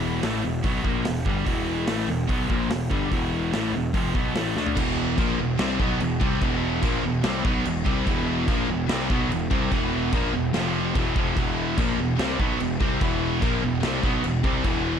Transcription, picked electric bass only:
0.00 0.20 E1 medium
0.22 0.42 A1 loud
0.43 0.62 E1 medium
0.64 0.83 B1 loud
0.84 1.04 A#1 medium
1.05 1.24 E1 medium
1.25 1.45 G1 medium
1.46 1.85 E1 medium
1.87 2.07 A1 medium
2.08 2.27 E1 medium
2.29 2.48 B1 medium
2.49 2.69 A#1 medium
2.69 2.89 E1 medium
2.91 3.10 G1 medium
3.11 3.50 E1 loud
3.53 3.72 A1 medium
3.73 3.93 E1 medium
3.94 4.13 F1 medium
4.15 4.34 B1 loud
4.35 4.54 A1 medium
4.55 4.75 D2 medium
4.77 5.15 E1 medium
5.18 5.37 A#1 medium
5.38 5.58 E1 medium
5.59 5.78 C2 loud
5.79 5.99 B1 loud
6.01 6.20 E1 medium
6.21 6.40 C2 medium
6.41 6.80 E1 loud
6.83 7.02 A#1 loud
7.03 7.23 E1 medium
7.24 7.43 C2 loud
7.45 7.64 B1 loud
7.65 7.84 E1 loud
7.86 8.05 C2 medium
8.07 8.45 E1 loud
8.48 8.67 A#1 loud
8.68 8.87 E1 loud
8.89 9.08 C2 loud
9.10 9.29 B1 loud
9.29 9.49 E1 medium
9.51 9.70 C2 loud
9.72 10.10 E1 loud
10.13 10.32 A#1 loud
10.33 10.53 E1 medium
10.53 10.92 F1 medium
10.95 11.14 E1 medium
11.16 11.35 F1 medium
11.37 11.75 E1 loud
11.78 11.97 A#1 loud
11.98 12.17 E1 medium
12.19 12.38 C2 loud
12.39 12.58 B1 loud
12.60 12.79 E1 medium
12.80 12.99 C2 loud
13.01 13.39 E1 loud
13.42 13.61 A#1 loud
13.62 13.81 E1 medium
13.83 14.02 C2 loud
14.03 14.22 B1 loud
14.24 14.43 E1 medium
14.44 14.63 C2 medium
14.64 14.99 E1 loud

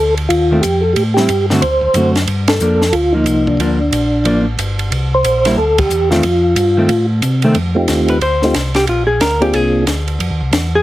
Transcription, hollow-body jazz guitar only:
0.51 0.62 D#3 medium
0.51 0.63 A3 medium
0.51 0.63 C4 medium
1.18 1.28 G3 medium
1.18 1.29 C4 medium
1.18 1.29 E4 medium
1.51 1.62 D3 medium
1.51 1.62 A3 medium
1.51 1.62 C4 medium
1.51 1.62 F#4 medium
1.96 2.14 D3 soft
1.96 2.14 A3 medium
1.96 2.14 C4 medium
1.96 2.14 F#4 medium
2.61 2.79 F3 soft
2.61 2.80 A#3 medium
2.61 2.80 D4 medium
3.14 3.57 F3 medium
3.14 3.58 A#3 medium
3.60 3.78 F3 medium
3.60 3.79 A#3 medium
3.60 3.79 D4 medium
4.25 4.44 F3 medium
4.25 4.45 A#3 medium
4.25 4.45 D4 medium
5.46 5.57 G3 medium
5.46 5.57 A#3 medium
5.46 5.57 E4 medium
6.11 6.22 D#3 medium
6.11 6.23 A3 medium
6.11 6.23 C4 medium
6.77 6.88 D#3 medium
6.77 6.89 A3 medium
6.77 6.89 C4 medium
7.44 7.55 D#3 medium
7.44 7.55 A3 medium
7.44 7.56 C4 medium
8.10 8.22 B4 medium
8.22 8.72 C5 medium
8.76 8.88 G4 medium
8.89 9.06 F4 medium
9.07 9.20 G#4 medium
9.21 9.41 A#4 medium
9.42 9.54 G4 medium
9.54 10.08 G#4 medium
10.75 10.83 G#4 medium

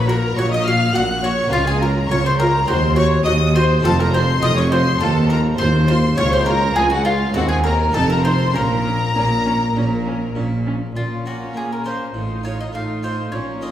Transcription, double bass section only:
0.00 0.29 A#1 medium
0.36 0.87 A#1 loud
0.94 1.45 A#1 medium
1.52 2.03 C#2 loud
2.09 2.61 C#2 medium
2.68 3.19 D#2 loud
3.26 3.78 D#2 loud
3.84 4.36 F1 loud
4.42 4.94 F1 medium
5.01 5.53 D#2 loud
5.59 6.11 D#2 medium
6.18 6.70 C#2 loud
6.77 7.29 C#2 medium
7.35 7.88 D#2 medium
7.94 8.48 F1 medium
8.55 9.08 A#1 loud
9.15 9.69 A#1 medium
9.76 10.29 A#1 medium
10.36 10.89 A#1 medium
10.97 11.51 A#1 medium
11.55 12.13 A#2 soft
12.14 12.72 A1 soft
12.73 13.31 A2 soft
13.32 13.71 A#1 soft

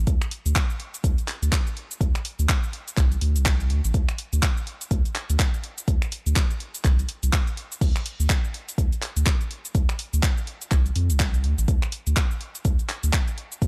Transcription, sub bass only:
0.07 0.18 D2 loud
0.46 0.53 D2 loud
1.04 1.15 D2 loud
1.42 1.50 D2 medium
2.01 2.11 D2 loud
2.39 2.47 D2 loud
2.97 3.16 C2 medium
3.22 3.37 D2 loud
3.36 3.72 C2 medium
3.70 3.81 D2 medium
3.85 3.92 A1 medium
3.94 4.05 D2 loud
4.33 4.40 D2 loud
4.91 5.02 D2 loud
5.30 5.37 D2 loud
5.88 5.98 D2 loud
6.26 6.34 D2 loud
6.85 7.04 C2 medium
7.23 7.30 C2 medium
7.81 7.92 D2 loud
8.20 8.27 D2 loud
8.78 8.89 D2 loud
9.16 9.24 D2 loud
9.75 9.85 D2 loud
10.13 10.21 D2 loud
10.71 10.91 C2 medium
10.96 11.11 F2 loud
11.10 11.45 C2 medium
11.44 11.55 D2 medium
11.58 11.66 A1 medium
11.68 11.79 D2 loud
12.07 12.14 D2 loud
12.65 12.76 D2 loud
13.04 13.11 D2 medium
13.62 13.68 D2 loud

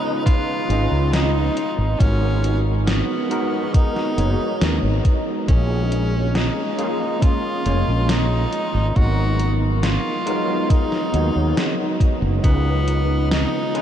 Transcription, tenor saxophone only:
0.00 0.25 D#4 loud
0.26 1.15 F4 loud
1.13 2.01 D#4 loud
2.00 2.60 C#4 loud
2.87 3.76 B3 medium
3.74 5.05 D#4 loud
5.49 6.37 C#4 medium
6.36 7.24 D#4 medium
7.23 8.11 F4 loud
8.09 8.98 D#4 loud
8.96 9.56 F#4 loud
9.83 10.71 F4 loud
10.70 12.00 D#4 medium
12.44 13.27 B3 loud
13.31 13.82 D#4 loud

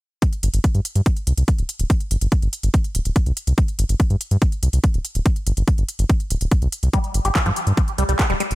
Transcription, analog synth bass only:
0.43 0.49 G1 loud
0.54 0.59 G1 medium
0.75 0.80 G2 medium
0.96 1.01 G2 medium
1.27 1.33 C2 medium
1.37 1.43 C2 medium
1.58 1.64 D1 medium
1.79 1.85 D1 medium
2.11 2.17 G1 medium
2.21 2.27 G1 medium
2.42 2.48 G1 medium
2.63 2.69 G1 medium
2.95 3.01 D1 medium
3.05 3.11 D1 medium
3.26 3.32 C2 medium
3.47 3.53 C2 medium
3.79 3.85 G1 medium
3.89 3.95 G1 medium
4.10 4.16 G2 medium
4.31 4.37 G2 medium
4.63 4.68 C2 medium
4.73 4.79 C2 medium
4.94 5.00 D1 medium
5.15 5.21 D1 medium
5.47 5.52 G1 loud
5.57 5.63 G1 medium
5.78 5.84 G1 medium
5.99 6.05 G1 medium
6.30 6.36 D1 medium
6.41 6.47 D1 medium
6.62 6.68 C2 medium
6.83 6.89 C2 medium
7.14 7.20 G1 medium
7.25 7.31 G1 medium
7.46 7.52 G2 medium
7.67 7.73 G2 medium
7.98 8.04 C2 medium
8.09 8.15 C2 medium
8.30 8.36 D1 medium
8.51 8.55 D1 medium

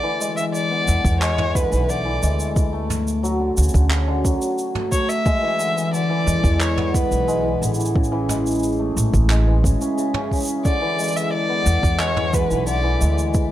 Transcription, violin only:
0.00 0.34 D5 medium
0.37 0.44 E5 medium
0.54 1.17 D5 loud
1.21 1.57 C#5 medium
1.56 1.91 B4 medium
1.89 2.40 D5 medium
4.92 5.11 C#5 medium
5.09 5.93 E5 loud
5.94 6.62 D5 loud
6.61 6.87 C#5 medium
6.87 6.96 C#5 medium
6.95 7.62 B4 medium
10.65 11.18 D5 medium
11.16 11.33 E5 medium
11.33 12.02 D5 loud
12.00 12.36 C#5 medium
12.34 12.68 B4 medium
12.69 13.15 D5 medium

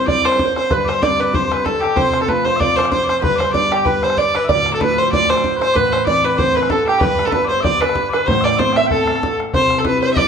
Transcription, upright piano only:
0.00 0.66 C2 medium
0.00 0.67 C3 medium
0.07 0.38 G3 soft
0.07 0.38 C4 soft
0.07 0.38 E4 medium
0.70 1.93 G1 medium
0.70 1.93 G2 medium
1.02 1.32 G3 medium
1.02 1.33 C4 soft
1.02 1.33 D4 medium
1.33 1.64 G3 soft
1.33 1.65 C4 soft
1.33 1.65 D4 soft
1.96 3.19 F1 medium
1.96 3.19 F2 medium
2.27 2.58 A3 medium
2.27 2.59 C4 soft
2.27 2.59 F4 medium
2.59 2.90 A3 soft
2.59 2.91 C4 soft
2.59 2.91 F4 medium
3.23 4.46 G1 medium
3.23 4.46 G2 medium
3.54 3.84 G3 medium
3.54 3.85 B3 soft
3.54 3.85 D4 medium
3.86 4.17 G3 soft
3.86 4.17 B3 soft
3.86 4.17 D4 medium
4.50 5.72 D1 medium
4.50 5.72 D2 medium
4.80 5.11 F3 medium
4.80 5.11 A3 soft
4.80 5.11 D4 medium
5.12 5.43 F3 soft
5.12 5.43 A3 soft
5.12 5.44 D4 medium
5.75 6.98 A1 medium
5.75 6.98 A2 medium
6.07 6.37 E3 medium
6.07 6.37 A3 soft
6.07 6.38 C4 medium
6.38 6.69 E3 medium
6.38 6.70 A3 soft
6.38 6.70 C4 medium
7.02 8.24 G1 medium
7.02 8.24 G2 medium
7.33 7.64 D3 medium
7.33 7.64 G3 soft
7.33 7.65 B3 medium
7.65 7.96 D3 soft
7.65 7.96 G3 soft
7.65 7.96 B3 medium
8.28 9.50 A1 medium
8.28 9.51 A2 medium
8.59 8.89 A3 medium
8.59 8.89 B3 soft
8.59 8.89 C4 medium
8.90 9.21 A3 soft
8.90 9.21 B3 soft
8.90 9.21 C4 medium
9.53 10.28 C2 medium
9.53 10.28 C3 medium
9.85 10.15 G3 soft
9.85 10.15 C4 soft
9.85 10.16 E4 medium
10.17 10.28 G3 soft
10.17 10.28 C4 soft
10.17 10.28 E4 medium

